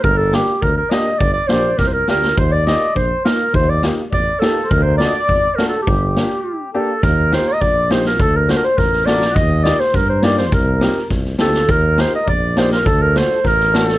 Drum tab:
SD |--o---o-|--o-o-oo|--o---o-|--o---o-|
BD |o---o---|o---o---|o---o---|o---o---|

SD |--o---o-|--o-----|o-o---oo|o-o-oooo|
BD |o---o---|o-------|o---o---|o---o---|

SD |o-ooo-oo|o-oooooo|o-o---oo|o-oooooo|
BD |o---o---|o---o---|o---o---|o---o---|